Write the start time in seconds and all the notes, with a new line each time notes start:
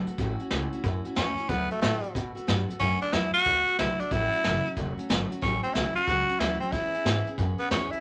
0.07 A3 B3 F#4 A4, muted upright bass stroke, closed hi-hat
0.18 A1 A3 C#4 E4 F#4, kick, closed hi-hat
0.39 C#4 E4 F#4, muted upright bass stroke, closed hi-hat
0.50 C#2 A3 C#4 E4 F#4, snare, closed hi-hat
0.72 C#4 E4 F#4, muted upright bass stroke, closed hi-hat
0.84 F#2 A3 C#4 E4 F#4, kick, closed hi-hat
1.04 C#4 E4 F#4, muted upright bass stroke, closed hi-hat
1.16 E2 A3 C#4 E4 F#4, snare, closed hi-hat
1.37 C#4 E4 F#4, muted upright bass stroke, closed hi-hat
1.49 D2 D3 F#3 A3 B3 F#4 A4, kick, closed hi-hat
1.69 A3 B3 F#4 A4, closed hi-hat
1.81 A2 D3 F#3 A3 B3 F#4 A4, snare, closed hi-hat
2.02 A3 B3 F#4 A4, closed hi-hat
2.14 B2 A3 B3 F#4 A4, kick, closed hi-hat
2.35 A3 B3 F#4 A4, muted upright bass stroke, closed hi-hat
2.47 G2 D3 F#3 A3 B3 F#4 A4, snare, closed hi-hat
2.68 A3 B3 F#4 A4, muted upright bass stroke, closed hi-hat
2.80 F#2 D3 F#3 A3 B3 C#4 F#4 A4, kick, closed hi-hat
3.01 A3 B3 D4 F#4 A4, muted upright bass stroke, closed hi-hat
3.13 E2 D3 F#3 A3 B3 E4 F#4 A4, snare, closed hi-hat
3.33 A3 B3 F#4 A4, closed hi-hat
3.45 D2 A3 B3 F#4 A4, kick, closed hi-hat
3.67 A3 B3 F#4 A4, closed hi-hat
3.79 B1 D3 F#3 A3 B3 E4 F#4 A4, snare, closed hi-hat
4.00 A3 B3 D4 F#4 A4, muted upright bass stroke, closed hi-hat
4.11 A1 A2 E3 F#3 A3 C#4 E4 F#4, kick, closed hi-hat
4.32 F#3 A3 C#4 F#4, muted upright bass stroke, closed hi-hat
4.43 F#1 A2 E3 F#3 A3 C#4 F#4, snare, closed hi-hat
4.65 F#3 A3 C#4 F#4, closed hi-hat
4.76 E1 F#3 A3 C#4 F#4, kick, closed hi-hat
4.98 F#3 A3 C#4 F#4, muted upright bass stroke, closed hi-hat
5.09 G1 A2 E3 F#3 A3 C#4 F#4, snare, closed hi-hat
5.30 F#3 A3 C#4 F#4, muted upright bass stroke, closed hi-hat
5.42 A1 A2 E3 F#3 A3 C#4 F#4, kick, closed hi-hat
5.63 F#3 A3 C4 C#4 F#4, muted upright bass stroke, closed hi-hat
5.74 B1 A2 E3 F#3 A3 C#4 E4 F#4, snare, closed hi-hat
5.95 F#3 A3 C#4 F#4, muted upright bass stroke, closed hi-hat
6.07 C#2 F#3 A3 C#4 F#4, kick, closed hi-hat
6.29 F#3 A3 C#4 F#4, closed hi-hat
6.40 D2 A2 E3 F#3 A3 C#4 E4 F#4, snare, closed hi-hat
6.60 F#3 A3 C4 C#4 F#4, muted upright bass stroke, closed hi-hat
6.72 E2 E3 G#3 B3 C#4 E4 G#4, kick, closed hi-hat
6.94 B3 C#4 G#4, muted upright bass stroke, closed hi-hat
7.05 G#2 E3 G#3 B3 C#4 G#4, snare, closed hi-hat
7.27 B3 C#4 G#4, muted upright bass stroke, closed hi-hat
7.38 F#2 G#3 B3 C#4 G#4, kick, closed hi-hat
7.59 B3 C#4 G#4, muted upright bass stroke, closed hi-hat
7.70 E2 E3 G#3 B3 C#4 G#4, snare, closed hi-hat
7.91 B3 C#4 E4 G#4, muted upright bass stroke, closed hi-hat